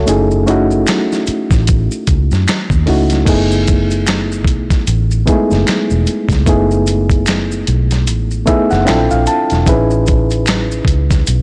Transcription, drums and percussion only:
0.07 closed hi-hat medium
0.07 maracas medium
0.31 maracas soft
0.47 closed hi-hat medium
0.47 maracas soft
0.71 maracas soft
0.87 finger snap medium
0.87 closed hi-hat medium
0.87 maracas medium
0.88 finger snap medium
0.88 snare loud
1.12 snare soft
1.12 maracas medium
1.26 closed hi-hat medium
1.26 maracas soft
1.51 kick loud
1.51 snare soft
1.51 maracas medium
1.67 kick loud
1.67 closed hi-hat medium
1.67 maracas medium
1.91 maracas soft
2.07 kick medium
2.07 closed hi-hat medium
2.07 maracas soft
2.31 snare soft
2.31 maracas soft
2.48 finger snap medium
2.48 snare loud
2.48 closed hi-hat medium
2.48 maracas medium
2.70 kick medium
2.70 maracas soft
2.87 open hi-hat soft
3.10 snare soft
3.10 closed hi-hat soft
3.10 maracas soft
3.26 kick loud
3.26 closed hi-hat medium
3.26 crash medium
3.26 maracas medium
3.51 maracas soft
3.67 kick medium
3.67 closed hi-hat medium
3.67 maracas soft
3.91 closed hi-hat soft
3.91 maracas soft
4.07 finger snap medium
4.07 snare medium
4.07 closed hi-hat medium
4.07 maracas medium
4.32 maracas soft
4.44 kick medium
4.44 closed hi-hat medium
4.70 kick medium
4.70 snare soft
4.70 closed hi-hat soft
4.70 maracas soft
4.87 closed hi-hat medium
4.87 maracas medium
5.11 maracas soft
5.27 kick medium
5.27 closed hi-hat medium
5.27 maracas soft
5.51 snare soft
5.51 maracas soft
5.67 finger snap medium
5.67 snare loud
5.67 closed hi-hat medium
5.67 maracas medium
5.90 maracas soft
6.07 closed hi-hat medium
6.07 maracas soft
6.29 kick medium
6.29 snare soft
6.29 closed hi-hat soft
6.29 maracas soft
6.46 kick loud
6.46 closed hi-hat medium
6.46 maracas medium
6.71 maracas soft
6.87 closed hi-hat medium
6.87 maracas soft
7.10 kick medium
7.10 closed hi-hat soft
7.10 maracas soft
7.26 finger snap medium
7.26 closed hi-hat medium
7.26 maracas medium
7.28 finger snap medium
7.28 snare loud
7.52 maracas soft
7.67 closed hi-hat medium
7.91 snare soft
7.91 closed hi-hat soft
7.91 maracas soft
8.07 closed hi-hat medium
8.07 maracas medium
8.31 maracas soft
8.47 kick medium
8.47 closed hi-hat medium
8.47 maracas soft
8.71 snare soft
8.71 maracas soft
8.87 finger snap medium
8.87 snare loud
8.87 closed hi-hat medium
8.87 maracas medium
9.11 maracas soft
9.26 closed hi-hat medium
9.26 maracas soft
9.50 snare soft
9.50 closed hi-hat soft
9.50 maracas soft
9.66 kick loud
9.66 closed hi-hat medium
9.66 maracas medium
9.91 maracas soft
10.06 kick medium
10.06 closed hi-hat medium
10.06 maracas soft
10.30 closed hi-hat soft
10.30 maracas soft
10.46 finger snap medium
10.46 closed hi-hat medium
10.46 maracas medium
10.48 finger snap medium
10.48 snare loud
10.71 maracas medium
10.85 kick medium
10.85 closed hi-hat medium
11.11 kick loud
11.11 snare soft
11.11 closed hi-hat soft
11.11 maracas medium
11.27 closed hi-hat medium
11.27 maracas medium

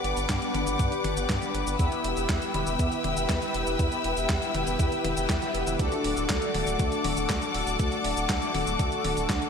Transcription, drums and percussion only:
0.04 closed hi-hat medium
0.17 closed hi-hat soft
0.17 cabasa medium
0.29 kick loud
0.29 snare loud
0.29 clap loud
0.29 closed hi-hat medium
0.29 cabasa medium
0.42 closed hi-hat soft
0.42 cabasa soft
0.54 closed hi-hat medium
0.54 high tom medium
0.67 closed hi-hat soft
0.67 cabasa medium
0.79 kick loud
0.79 closed hi-hat medium
0.79 cabasa medium
0.92 closed hi-hat soft
0.92 cabasa soft
1.04 closed hi-hat medium
1.04 high tom medium
1.17 closed hi-hat soft
1.17 cabasa medium
1.29 kick loud
1.29 snare loud
1.29 clap medium
1.29 closed hi-hat medium
1.29 cabasa soft
1.42 closed hi-hat soft
1.42 cabasa soft
1.55 closed hi-hat medium
1.67 closed hi-hat soft
1.67 cabasa medium
1.79 kick loud
1.79 closed hi-hat medium
1.79 cabasa medium
1.92 closed hi-hat soft
1.92 cabasa soft
2.04 closed hi-hat loud
2.17 closed hi-hat soft
2.17 cabasa medium
2.29 kick loud
2.29 snare loud
2.29 clap loud
2.29 closed hi-hat medium
2.29 cabasa soft
2.42 closed hi-hat soft
2.42 cabasa soft
2.54 closed hi-hat loud
2.54 high tom medium
2.67 closed hi-hat soft
2.67 cabasa medium
2.79 kick loud
2.79 closed hi-hat medium
2.79 cabasa soft
2.92 closed hi-hat soft
2.92 cabasa soft
3.04 closed hi-hat loud
3.04 high tom medium
3.17 closed hi-hat soft
3.17 cabasa medium
3.29 kick medium
3.29 snare loud
3.29 clap medium
3.29 closed hi-hat medium
3.29 cabasa medium
3.42 closed hi-hat soft
3.42 cabasa soft
3.54 closed hi-hat loud
3.67 closed hi-hat soft
3.67 cabasa medium
3.79 kick loud
3.79 closed hi-hat medium
3.79 cabasa soft
3.92 closed hi-hat soft
3.92 cabasa soft
4.04 closed hi-hat loud
4.17 closed hi-hat soft
4.17 cabasa medium
4.29 kick loud
4.29 snare loud
4.29 clap loud
4.29 closed hi-hat medium
4.29 cabasa soft
4.42 closed hi-hat soft
4.42 cabasa soft
4.54 closed hi-hat loud
4.54 high tom medium
4.67 closed hi-hat soft
4.67 cabasa medium
4.79 kick loud
4.79 closed hi-hat medium
4.79 cabasa medium
4.92 closed hi-hat soft
4.92 cabasa soft
5.05 closed hi-hat loud
5.05 high tom medium
5.17 closed hi-hat soft
5.17 cabasa medium
5.29 kick loud
5.29 snare loud
5.29 clap loud
5.29 closed hi-hat medium
5.29 cabasa soft
5.42 snare soft
5.42 closed hi-hat soft
5.42 cabasa soft
5.55 closed hi-hat medium
5.67 closed hi-hat soft
5.67 high tom medium
5.67 cabasa medium
5.79 kick loud
5.79 closed hi-hat medium
5.79 cabasa soft
5.92 closed hi-hat soft
5.92 cabasa soft
6.04 open hi-hat loud
6.17 closed hi-hat soft
6.17 cabasa medium
6.29 kick loud
6.29 snare loud
6.29 clap loud
6.29 closed hi-hat medium
6.29 cabasa soft
6.42 closed hi-hat soft
6.42 cabasa soft
6.54 open hi-hat loud
6.54 high tom medium
6.67 closed hi-hat soft
6.67 cabasa medium
6.79 kick loud
6.79 closed hi-hat medium
6.79 cabasa soft
6.92 closed hi-hat soft
6.92 cabasa soft
7.04 open hi-hat loud
7.04 high tom medium
7.17 closed hi-hat soft
7.17 cabasa medium
7.29 kick loud
7.29 snare loud
7.29 clap loud
7.29 closed hi-hat medium
7.29 cabasa soft
7.42 closed hi-hat soft
7.42 cabasa soft
7.54 open hi-hat loud
7.67 closed hi-hat soft
7.67 cabasa medium
7.79 kick loud
7.79 closed hi-hat medium
7.79 cabasa soft
7.92 closed hi-hat soft
7.92 cabasa soft
8.04 open hi-hat loud
8.17 closed hi-hat soft
8.17 cabasa medium
8.29 kick loud
8.29 snare loud
8.29 clap loud
8.29 closed hi-hat medium
8.29 cabasa soft
8.42 closed hi-hat soft
8.42 cabasa soft
8.54 open hi-hat loud
8.54 high tom medium
8.67 closed hi-hat soft
8.67 cabasa medium
8.79 kick loud
8.79 closed hi-hat medium
8.79 cabasa soft
8.92 closed hi-hat soft
8.92 cabasa soft
9.04 open hi-hat loud
9.04 high tom medium
9.17 closed hi-hat soft
9.17 cabasa medium
9.29 kick loud
9.29 snare loud
9.29 clap loud
9.29 closed hi-hat medium
9.29 cabasa soft
9.42 closed hi-hat soft
9.42 cabasa soft

